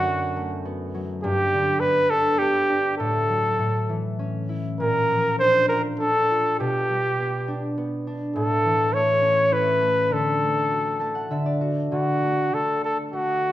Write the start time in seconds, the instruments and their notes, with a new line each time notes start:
Already playing: harp F#2 D3 B3 D4 E4, flugelhorn F#4
0.07 harp F#3
0.36 harp A3
0.65 harp B3
0.95 harp F#3
1.23 harp G2, flugelhorn G4
1.54 harp D3
1.80 harp B3, flugelhorn B4
2.10 harp D4, flugelhorn A4
2.39 harp B3, flugelhorn G4
2.70 harp D4
2.98 harp A2, flugelhorn A4
3.29 harp F#3
3.59 harp A2
3.89 harp E3
4.19 harp C#4
4.49 harp E4
4.80 harp A#2, flugelhorn A#4
5.10 harp F3
5.39 harp D4, flugelhorn C5
5.68 harp F4, flugelhorn A#4
6.00 harp D4, flugelhorn A4
6.31 harp F4
6.59 harp B2, flugelhorn G4
6.90 harp G3
7.19 harp B3
7.48 harp D4
7.78 harp B3
8.07 harp D4
8.36 harp A2, flugelhorn A4
8.65 harp E3
8.93 harp A3, flugelhorn C#5
9.22 harp C#4
9.52 harp E4, flugelhorn B4
9.81 harp A3
10.10 harp D3, flugelhorn A4
10.41 harp A3
10.70 harp F#4
11.00 harp A3 A5
11.15 harp F#5
11.31 harp D3 E5
11.46 harp D5
11.61 harp F#4
11.92 harp D3, flugelhorn F#4
12.23 harp A3
12.53 harp D3, flugelhorn A4
12.85 flugelhorn A4
13.13 harp A3, flugelhorn F#4